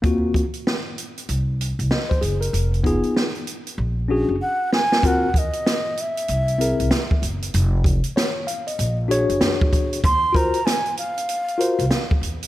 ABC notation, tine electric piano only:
X:1
M:4/4
L:1/16
Q:"Swing 16ths" 1/4=96
K:Ebdor
V:1 name="Tine electric piano"
[B,CFG]2 z8 z2 e c A B- | B z [_CEFA]2 z6 [^C=D^FA]2 z4 | [CFGB]2 z8 [C=E^GB]2 z4 | z4 d2 f e2 z [=D^FA^c]6 |
z2 [FGBc]2 z6 [FGBc]2 z4 |]